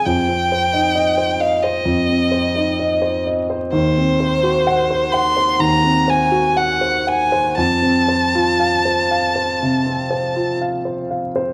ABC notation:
X:1
M:4/4
L:1/16
Q:1/4=63
K:Cphr
V:1 name="Violin"
g6 f e6- e z2 | [K:Fphr] c6 c'2 b2 a2 g2 a2 | =a12 z4 |]
V:2 name="Grand piano"
F,, C c E e c e c F,, C c E e c e c | [K:Fphr] E,, C c G g c g c E,, C c G g c g c | F,, C c F f c f c C, C c F f c f c |]